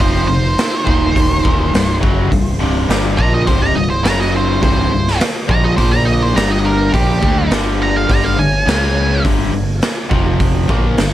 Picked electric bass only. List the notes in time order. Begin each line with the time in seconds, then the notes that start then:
0.00 F1
0.29 F1
0.87 D#1
1.46 D#1
1.74 C1
2.03 F#1
2.32 C1
2.61 C1
2.89 G1
3.19 A#1
3.48 C1
3.76 C1
4.05 F#1
4.63 C1
4.92 C1
5.49 A#1
5.78 A#1
6.36 G1
6.94 A#1
7.23 D2
7.51 G1
8.10 G1
8.38 G1
8.67 C#2
9.25 G1
9.52 G1
10.11 F1
10.70 A#1
10.97 G1